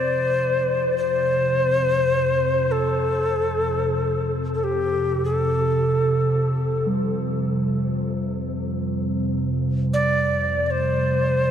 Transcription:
0, 0, Header, 1, 4, 480
1, 0, Start_track
1, 0, Key_signature, -1, "major"
1, 0, Tempo, 500000
1, 11048, End_track
2, 0, Start_track
2, 0, Title_t, "Native American-style wooden flute"
2, 0, Program_c, 0, 77
2, 0, Note_on_c, 0, 72, 83
2, 931, Note_off_c, 0, 72, 0
2, 939, Note_on_c, 0, 72, 89
2, 2606, Note_on_c, 0, 69, 81
2, 2620, Note_off_c, 0, 72, 0
2, 4167, Note_off_c, 0, 69, 0
2, 4364, Note_on_c, 0, 69, 46
2, 4450, Note_on_c, 0, 67, 66
2, 4465, Note_off_c, 0, 69, 0
2, 5034, Note_off_c, 0, 67, 0
2, 5039, Note_on_c, 0, 69, 69
2, 6590, Note_off_c, 0, 69, 0
2, 9538, Note_on_c, 0, 74, 90
2, 10234, Note_off_c, 0, 74, 0
2, 10234, Note_on_c, 0, 74, 59
2, 10279, Note_on_c, 0, 72, 84
2, 10294, Note_off_c, 0, 74, 0
2, 11048, Note_off_c, 0, 72, 0
2, 11048, End_track
3, 0, Start_track
3, 0, Title_t, "Singing bowl"
3, 0, Program_c, 1, 14
3, 6593, Note_on_c, 1, 55, 60
3, 11048, Note_off_c, 1, 55, 0
3, 11048, End_track
4, 0, Start_track
4, 0, Title_t, "Ambient pad"
4, 0, Program_c, 2, 92
4, 0, Note_on_c, 2, 41, 66
4, 0, Note_on_c, 2, 48, 70
4, 11048, Note_off_c, 2, 41, 0
4, 11048, Note_off_c, 2, 48, 0
4, 11048, End_track
0, 0, End_of_file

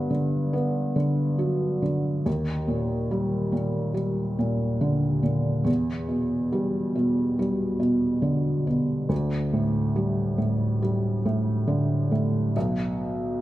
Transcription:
0, 0, Header, 1, 2, 480
1, 0, Start_track
1, 0, Tempo, 857143
1, 1269, Time_signature, 4, 2, 24, 8
1, 7511, End_track
2, 0, Start_track
2, 0, Title_t, "Felt piano"
2, 0, Program_c, 0, 0
2, 0, Control_c, 0, 64, 127
2, 0, Note_on_c, 0, 43, 47
2, 0, Note_on_c, 0, 50, 35
2, 0, Note_on_c, 0, 59, 43
2, 58, Note_off_c, 0, 50, 0
2, 58, Note_on_c, 0, 50, 44
2, 290, Note_off_c, 0, 59, 0
2, 298, Note_on_c, 0, 59, 45
2, 528, Note_off_c, 0, 50, 0
2, 536, Note_on_c, 0, 50, 44
2, 776, Note_on_c, 0, 54, 42
2, 1012, Note_off_c, 0, 50, 0
2, 1021, Note_on_c, 0, 50, 40
2, 1240, Note_off_c, 0, 59, 0
2, 1242, Note_off_c, 0, 43, 0
2, 1247, Note_off_c, 0, 54, 0
2, 1257, Note_off_c, 0, 50, 0
2, 1264, Note_on_c, 0, 39, 53
2, 1277, Control_c, 0, 64, 0
2, 1360, Control_c, 0, 64, 127
2, 1499, Note_on_c, 0, 46, 40
2, 1742, Note_on_c, 0, 55, 48
2, 1964, Note_off_c, 0, 46, 0
2, 1972, Note_on_c, 0, 46, 43
2, 2199, Note_off_c, 0, 55, 0
2, 2208, Note_on_c, 0, 55, 43
2, 2449, Note_off_c, 0, 46, 0
2, 2457, Note_on_c, 0, 46, 46
2, 2693, Note_on_c, 0, 50, 49
2, 2920, Note_off_c, 0, 46, 0
2, 2928, Note_on_c, 0, 46, 43
2, 3151, Note_off_c, 0, 55, 0
2, 3157, Note_off_c, 0, 39, 0
2, 3160, Note_on_c, 0, 40, 55
2, 3162, Note_off_c, 0, 50, 0
2, 3167, Note_off_c, 0, 46, 0
2, 3189, Control_c, 0, 64, 0
2, 3293, Control_c, 0, 64, 127
2, 3408, Note_on_c, 0, 47, 39
2, 3653, Note_on_c, 0, 55, 47
2, 3886, Note_off_c, 0, 47, 0
2, 3894, Note_on_c, 0, 47, 48
2, 4130, Note_off_c, 0, 55, 0
2, 4138, Note_on_c, 0, 55, 48
2, 4357, Note_off_c, 0, 47, 0
2, 4365, Note_on_c, 0, 47, 48
2, 4603, Note_on_c, 0, 50, 44
2, 4847, Note_off_c, 0, 47, 0
2, 4856, Note_on_c, 0, 47, 44
2, 5069, Note_off_c, 0, 40, 0
2, 5078, Note_off_c, 0, 50, 0
2, 5079, Note_off_c, 0, 55, 0
2, 5091, Note_on_c, 0, 38, 51
2, 5092, Note_off_c, 0, 47, 0
2, 5110, Control_c, 0, 64, 0
2, 5198, Control_c, 0, 64, 127
2, 5338, Note_on_c, 0, 45, 42
2, 5577, Note_on_c, 0, 55, 44
2, 5804, Note_off_c, 0, 45, 0
2, 5812, Note_on_c, 0, 45, 40
2, 6053, Note_off_c, 0, 55, 0
2, 6061, Note_on_c, 0, 55, 46
2, 6294, Note_off_c, 0, 45, 0
2, 6303, Note_on_c, 0, 45, 41
2, 6538, Note_on_c, 0, 50, 48
2, 6776, Note_off_c, 0, 45, 0
2, 6785, Note_on_c, 0, 45, 40
2, 7002, Note_off_c, 0, 38, 0
2, 7006, Note_off_c, 0, 55, 0
2, 7011, Note_off_c, 0, 50, 0
2, 7020, Note_off_c, 0, 45, 0
2, 7035, Note_on_c, 0, 35, 55
2, 7036, Note_on_c, 0, 47, 63
2, 7038, Control_c, 0, 64, 0
2, 7133, Control_c, 0, 64, 127
2, 7511, Note_off_c, 0, 35, 0
2, 7511, Note_off_c, 0, 47, 0
2, 7511, End_track
0, 0, End_of_file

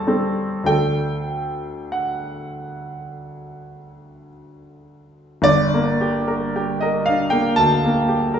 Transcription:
0, 0, Header, 1, 2, 480
1, 0, Start_track
1, 0, Key_signature, -2, "minor"
1, 0, Tempo, 1229508
1, 271, Time_signature, 4, 2, 24, 8
1, 1233, Tempo, 1151631
1, 2193, Tempo, 1088929
1, 2673, Tempo, 1018676
1, 3542, End_track
2, 0, Start_track
2, 0, Title_t, "Grand piano"
2, 0, Program_c, 0, 0
2, 0, Control_c, 0, 64, 127
2, 0, Note_on_c, 0, 39, 62
2, 0, Note_on_c, 0, 55, 43
2, 0, Note_on_c, 0, 60, 45
2, 0, Note_on_c, 0, 69, 48
2, 0, Note_on_c, 0, 81, 78
2, 0, Note_on_c, 0, 84, 100
2, 27, Note_off_c, 0, 55, 0
2, 27, Note_on_c, 0, 55, 48
2, 30, Note_off_c, 0, 60, 0
2, 30, Note_off_c, 0, 69, 0
2, 30, Note_on_c, 0, 60, 49
2, 30, Note_on_c, 0, 69, 48
2, 248, Note_on_c, 0, 38, 50
2, 251, Note_on_c, 0, 57, 43
2, 253, Note_off_c, 0, 55, 0
2, 254, Note_off_c, 0, 60, 0
2, 255, Note_off_c, 0, 69, 0
2, 259, Note_on_c, 0, 62, 41
2, 259, Note_on_c, 0, 79, 85
2, 263, Note_on_c, 0, 69, 41
2, 265, Note_off_c, 0, 81, 0
2, 278, Control_c, 0, 64, 0
2, 279, Note_off_c, 0, 84, 0
2, 283, Note_off_c, 0, 39, 0
2, 350, Control_c, 0, 64, 127
2, 749, Note_on_c, 0, 78, 59
2, 756, Note_off_c, 0, 79, 0
2, 1706, Note_off_c, 0, 78, 0
2, 2164, Note_off_c, 0, 38, 0
2, 2166, Note_off_c, 0, 57, 0
2, 2170, Note_off_c, 0, 62, 0
2, 2172, Note_off_c, 0, 69, 0
2, 2175, Note_on_c, 0, 31, 69
2, 2182, Note_on_c, 0, 74, 105
2, 2202, Control_c, 0, 64, 0
2, 2282, Control_c, 0, 64, 127
2, 2317, Note_on_c, 0, 58, 59
2, 2435, Note_on_c, 0, 67, 66
2, 2508, Note_off_c, 0, 58, 0
2, 2552, Note_on_c, 0, 70, 58
2, 2626, Note_off_c, 0, 67, 0
2, 2677, Note_on_c, 0, 67, 60
2, 2746, Note_off_c, 0, 70, 0
2, 2791, Note_off_c, 0, 74, 0
2, 2793, Note_on_c, 0, 75, 72
2, 2802, Note_on_c, 0, 70, 57
2, 2872, Note_off_c, 0, 67, 0
2, 2911, Note_on_c, 0, 77, 88
2, 2917, Note_off_c, 0, 75, 0
2, 2924, Note_on_c, 0, 62, 55
2, 2993, Note_off_c, 0, 70, 0
2, 3027, Note_on_c, 0, 79, 86
2, 3034, Note_off_c, 0, 77, 0
2, 3036, Note_on_c, 0, 58, 53
2, 3112, Note_off_c, 0, 62, 0
2, 3127, Note_off_c, 0, 31, 0
2, 3150, Note_on_c, 0, 81, 99
2, 3151, Note_off_c, 0, 79, 0
2, 3159, Note_on_c, 0, 38, 52
2, 3226, Note_off_c, 0, 58, 0
2, 3283, Note_on_c, 0, 58, 58
2, 3347, Note_off_c, 0, 38, 0
2, 3397, Note_on_c, 0, 67, 59
2, 3469, Note_off_c, 0, 58, 0
2, 3516, Note_on_c, 0, 70, 59
2, 3542, Note_off_c, 0, 67, 0
2, 3542, Note_off_c, 0, 70, 0
2, 3542, Note_off_c, 0, 81, 0
2, 3542, End_track
0, 0, End_of_file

